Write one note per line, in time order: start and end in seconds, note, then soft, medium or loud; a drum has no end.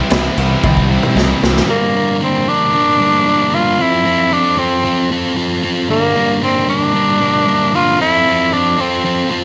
0.00 0.37 C3 loud
0.00 0.11 G3 medium
0.00 0.10 C4 loud
0.00 0.11 C4 medium
0.00 0.11 E4 loud
0.00 0.12 E4 medium
0.10 0.28 C2 medium
0.10 0.35 C3 medium
0.10 0.61 E3 medium
0.10 0.63 G3 medium
0.10 0.63 C4 medium
0.10 0.64 E4 medium
0.10 0.36 G4 loud
0.10 snare loud
0.10 cowbell medium
0.10 crash medium
0.36 0.54 C2 loud
0.36 0.61 C3 medium
0.36 0.62 G3 medium
0.36 0.62 C4 medium
0.36 0.62 E4 medium
0.36 0.63 G4 medium
0.36 crash medium
0.62 0.97 C2 medium
0.62 0.87 C3 medium
0.62 1.14 E3 medium
0.62 0.90 G3 medium
0.62 0.89 C4 medium
0.62 0.88 E4 medium
0.62 0.88 G4 medium
0.62 kick loud
0.62 high tom medium
0.62 cowbell loud
0.77 kick medium
0.88 1.13 C3 loud
0.88 1.14 G3 medium
0.88 1.15 C4 medium
0.88 1.15 E4 medium
0.88 1.15 G4 loud
1.03 mid tom medium
1.14 1.33 C2 medium
1.14 1.66 C3 medium
1.14 1.67 E3 loud
1.14 1.43 G3 loud
1.14 1.41 C4 loud
1.14 1.40 E4 medium
1.14 1.42 G4 medium
1.14 snare medium
1.14 cowbell medium
1.41 1.60 C2 medium
1.41 1.67 C3 medium
1.41 1.68 G3 medium
1.41 1.67 C4 medium
1.41 1.67 E4 medium
1.41 1.67 G4 loud
1.41 snare loud
1.56 snare medium
1.67 1.93 G2 loud
1.67 1.94 D3 loud
1.67 1.94 G3 loud
1.67 1.95 A#3 loud
1.67 2.18 A#3 medium
1.67 1.95 D4 loud
1.67 1.95 A#4 loud
1.94 2.19 G2 medium
1.94 2.19 D3 medium
1.94 2.20 G3 medium
1.94 2.20 A#3 medium
1.94 2.21 D4 medium
1.94 2.21 A#4 medium
2.20 2.45 G2 medium
2.20 2.46 D3 medium
2.20 2.47 G3 medium
2.20 2.47 A#3 medium
2.20 2.50 C4 medium
2.20 2.48 D4 medium
2.20 2.48 A#4 medium
2.46 2.72 G2 medium
2.46 2.72 D3 loud
2.46 2.73 G3 medium
2.46 2.73 A#3 loud
2.46 3.56 D4 loud
2.46 2.74 D4 loud
2.46 2.74 A#4 loud
2.73 2.99 G2 medium
2.73 2.99 D3 medium
2.73 2.99 G3 medium
2.73 3.00 A#3 loud
2.73 3.00 D4 loud
2.73 3.01 A#4 loud
3.00 3.24 G2 medium
3.00 3.25 D3 medium
3.00 3.26 G3 medium
3.00 3.26 A#3 medium
3.00 3.26 D4 medium
3.00 3.27 A#4 medium
3.26 3.51 G2 medium
3.26 3.52 D3 medium
3.26 3.52 G3 medium
3.26 3.52 A#3 medium
3.26 3.53 D4 loud
3.26 3.53 A#4 medium
3.52 3.77 G2 medium
3.52 3.78 D3 medium
3.52 3.78 G3 medium
3.52 3.78 A#3 medium
3.52 3.78 D4 medium
3.52 3.83 F4 loud
3.52 3.78 A#4 medium
3.79 4.04 F3 loud
3.79 4.04 C4 loud
3.79 4.35 E4 loud
3.79 4.05 F4 loud
3.79 4.06 A4 loud
4.05 4.30 F3 medium
4.05 4.31 C4 medium
4.05 4.31 F4 medium
4.05 4.32 A4 medium
4.32 4.56 F3 medium
4.32 4.56 C4 medium
4.32 4.60 D4 loud
4.32 4.56 F4 medium
4.32 4.57 A4 loud
4.57 4.82 F3 loud
4.57 4.83 C4 medium
4.57 5.11 C4 medium
4.57 4.83 F4 medium
4.57 4.84 A4 loud
4.84 5.10 F3 loud
4.84 5.10 C4 loud
4.84 5.11 F4 loud
4.84 5.11 A4 loud
5.11 5.35 F3 medium
5.11 5.35 C4 medium
5.11 5.36 F4 medium
5.11 5.37 A4 loud
5.37 5.62 F3 medium
5.37 5.62 C4 medium
5.37 5.63 F4 medium
5.37 5.63 A4 loud
5.63 5.88 F3 medium
5.63 5.88 C4 medium
5.63 5.88 F4 medium
5.63 5.89 A4 medium
5.89 6.14 G2 loud
5.89 6.14 D3 loud
5.89 6.15 G3 loud
5.89 6.15 A#3 loud
5.89 6.39 A#3 loud
5.89 6.15 D4 loud
5.89 6.16 A#4 medium
6.15 6.40 G2 medium
6.15 6.41 D3 medium
6.15 6.41 G3 medium
6.15 6.41 A#3 medium
6.15 6.42 D4 medium
6.15 6.42 A#4 medium
6.41 6.65 G2 medium
6.41 6.66 D3 medium
6.41 6.66 G3 medium
6.41 6.66 A#3 loud
6.41 6.67 C4 medium
6.41 6.67 D4 loud
6.41 6.67 A#4 medium
6.66 6.92 G2 medium
6.66 6.92 D3 medium
6.66 6.93 G3 medium
6.66 6.94 A#3 loud
6.66 6.93 D4 medium
6.66 7.77 D4 loud
6.66 6.94 A#4 loud
6.93 7.19 G2 loud
6.93 7.19 D3 medium
6.93 7.20 G3 loud
6.93 7.20 A#3 loud
6.93 7.21 D4 loud
6.93 7.21 A#4 loud
7.20 7.45 G2 medium
7.20 7.46 D3 medium
7.20 7.46 G3 medium
7.20 7.46 A#3 loud
7.20 7.47 D4 medium
7.20 7.47 A#4 medium
7.46 7.71 G2 medium
7.46 7.72 D3 medium
7.46 7.72 G3 medium
7.46 7.73 A#3 loud
7.46 7.74 D4 medium
7.46 7.74 A#4 loud
7.72 7.97 G2 medium
7.72 7.98 D3 medium
7.72 7.98 G3 medium
7.72 7.98 A#3 medium
7.72 7.99 D4 medium
7.72 8.00 F4 loud
7.72 7.99 A#4 medium
7.99 8.25 F3 loud
7.99 8.25 C4 loud
7.99 8.55 E4 loud
7.99 8.26 F4 loud
7.99 8.27 A4 loud
8.26 8.51 F3 medium
8.26 8.52 C4 medium
8.26 8.52 F4 medium
8.26 8.53 A4 medium
8.52 8.77 F3 loud
8.52 8.77 C4 medium
8.52 8.82 D4 loud
8.52 8.77 F4 medium
8.52 8.77 A4 medium
8.78 9.03 F3 medium
8.78 9.03 C4 loud
8.78 9.32 C4 medium
8.78 9.04 F4 loud
8.78 9.04 A4 loud
9.04 9.29 F3 loud
9.04 9.30 C4 medium
9.04 9.30 F4 loud
9.04 9.30 A4 loud
9.30 9.44 F3 medium
9.30 9.44 C4 medium
9.30 9.44 F4 medium
9.30 9.44 A4 medium